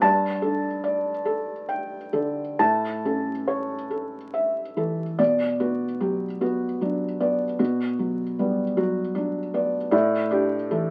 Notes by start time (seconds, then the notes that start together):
0.01 G2 A5
0.42 D4 A4
0.84 D5
1.25 A4
1.69 G5
2.13 D3 A4
2.59 A2 A5
3.05 C#4 A4
3.48 C#5
3.90 A4
4.34 E5
4.77 E3 A4
5.19 B2 D5
5.60 B3 F#4
6.00 F#3 G4
6.41 B3 F#4
6.81 F#3 D4
7.20 B3 D5
7.59 B2 F#4
7.99 F#3
8.39 G3 B3
8.77 F#3 F#4
9.15 F#3 D4
9.54 B3 D5
9.91 A2 D5
10.31 D4 G4
10.71 E3 A4